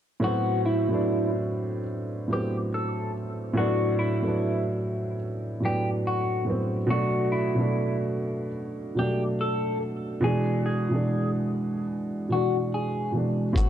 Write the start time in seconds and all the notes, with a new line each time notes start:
0.20 A2 F#3 B3
0.24 C4 F#4
0.66 E4
0.88 A2 F#3 B3
0.94 D4
2.28 A2 F#3 B3
2.33 C4 G4
2.74 A4
3.53 A2 F#3 B3
3.57 D4 F#4
3.99 E4
4.22 A2 F#3 B3
4.28 D4
5.60 A2 F#3 B3
5.65 D4 G4
6.07 F#4
6.45 A2 F#3 B3
6.50 C4
6.87 B2 F#3 A3 F#4
6.92 D4
7.32 E4
7.55 B2 F#3 A3
7.60 D4
8.95 B2 F#3 A3 G4
9.00 D4
9.41 A4
10.21 B2 E3 G#3 G#4
10.26 D4
10.66 G#4
10.89 B2 E3 G#3
10.95 D4
12.29 B2 E3 G#3 F#4
12.34 D4
12.74 G#4
13.12 B2 E3 G#3
13.17 D4
13.53 A1 A2 F#3 B3, kick
13.57 C4 F#4, closed hi-hat, shaker